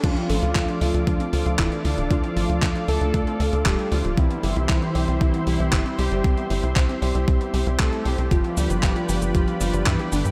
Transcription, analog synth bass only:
\new Staff \with { instrumentName = "Analog synth bass" } { \clef bass \time 4/4 \key d \dorian \tempo 4 = 116 d,16 r16 a,,16 d,16 d,16 r16 d,16 d,16 d,16 r16 d,16 d,16 d,,16 r16 d,16 d,,16 | d,16 r16 a,,16 d,16 d,16 r16 d,16 d,16 d,16 r16 d,16 d,16 d,,16 r16 d,16 d,,16 | c,16 r16 g,,16 c,16 c,16 r16 c,16 c,16 c,16 r16 c,16 c,16 g,,16 r16 c,16 g,,16 | c,16 r16 g,,16 c,16 c,16 r16 c,16 c,16 c,16 r16 c,16 c,16 c,16 r16 c,16 c,16 |
g,,16 r16 d,16 g,,16 g,,16 r16 g,,16 g,,16 g,,16 r16 g,,16 g,,16 g,16 r16 g,,16 g,16 | }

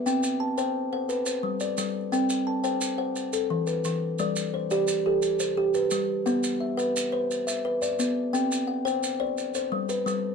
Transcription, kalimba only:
\new Staff \with { instrumentName = "Kalimba" } { \time 12/8 \key g \major \tempo 4. = 116 << { g''4 a''8 g''4 fis''8 b'8 c''4 d''4. | g''4 a''8 g''4 fis''4 a'4 b'4. | d''4 c''8 d''4 a'4 c''4 b'4. | fis''4 e''8 fis''4 c''4 e''4 d''4. |
g''4 fis''8 g''4 d''4 c''4 b'4. | } \\ { c'4 r8 c''4 c''8 r4 g4 g4 | c'4 r8 c''4 c''8 r4 e4 e4 | g4 r8 g'4 g'4 r8 g'4 g4 | b4 r8 b'4 b'4 r8 b'4 b4 |
c'4 r8 c''4 c''8 r4 g4 g4 | } >> }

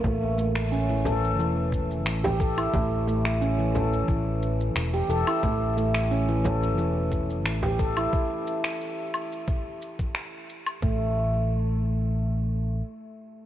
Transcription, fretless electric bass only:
\new Staff \with { instrumentName = "Fretless electric bass" } { \clef bass \time 4/4 \tempo 4 = 89 a,,2 e,,4 a,,4 | a,,2 a,,4 e,,8 e,,8 | a,,2 e,,4 a,,4 | r1 |
a,,2. r4 | }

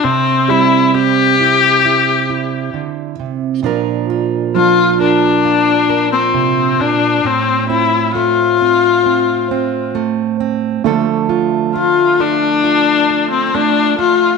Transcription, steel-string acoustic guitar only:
\new Staff \with { instrumentName = "Steel-string acoustic guitar" } { \time 4/4 \key f \major \tempo 4 = 67 << { r8 c'8 c'8 e'8 e'8 e'4. | <f d' f' bes'>8 f'8 d'8 bes'8 f'8 bes'4. | r8 c'8 a8 c'8 c'8 c'8 a8 c'8 | <f a f' a'>8 f'8 a8 a'8 f'8 a'8 a8 a8 | } \\ { c2. d8 c8 | bes,2. c8 bes,8 | a,1 | d1 | } >> }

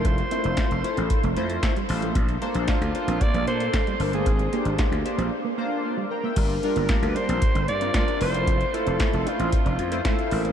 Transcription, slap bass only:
\new Staff \with { instrumentName = "Slap bass" } { \clef bass \time 4/4 \key f \major \tempo 4 = 114 f,,8 r16 f,,16 r16 f,,16 r16 a,,16 r16 f,,16 f,8 r8 a,,8 | bes,,8 r16 bes,,16 r16 d,16 r16 bes,,16 r16 bes,,16 bes,8 r8 g,,8 | aes,,8 r16 aes,,16 r16 d,16 r16 bes,,16 r2 | g,,8 r16 g,,16 r16 d,16 r16 bes,,16 r16 g,,16 g,8 r8 f,,8~ |
f,,8 r16 f,,16 r16 f,,16 r16 a,,16 r16 f,,16 f,8 r8 a,,8 | }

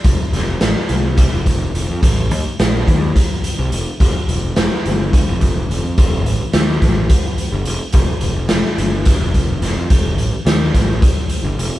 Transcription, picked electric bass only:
\new Staff \with { instrumentName = "Picked electric bass" } { \clef bass \time 7/8 \key f \mixolydian \tempo 4 = 107 f,,16 r16 f,,8 a,,16 r16 c,8. f,,8. f,,16 f,16 | a,,8 ees,16 r16 bes,,8 ees,8 r8. c,16 f,,16 r16 | f,,16 r16 f,,8 f,,16 r16 g,,8. f,,8. f,,16 f,16 | f,,8 a,,16 r16 ees,8 a,,8 r8. g,,16 f,,16 r16 |
f,,16 r16 f,,8 f,,16 r16 g,,8. f,,8. f,,16 f,16 | f,,8 a,,16 r16 ees,8 a,,8 r8. g,,16 f,,16 r16 | }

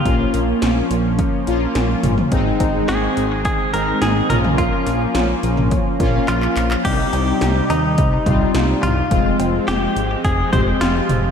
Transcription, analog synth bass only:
\new Staff \with { instrumentName = "Analog synth bass" } { \clef bass \time 4/4 \key bes \dorian \tempo 4 = 106 bes,,8 bes,,8 bes,,8 bes,,8. r16 bes,,8 bes,,8 g,,8 | aes,,8 aes,,8 aes,,8 aes,,8. r16 aes,,8 aes,,8 bes,,8~ | bes,,8 bes,,8 bes,,8 bes,,8. r16 bes,,8 bes,,8 bes,,8 | c,8 c,8 c,8 ees,8 c,8 c,8 c,8 c,8 |
f,,8 f,,8 f,,8 aes,,8 f,,8 f,,8 f,,8 f,,8 | }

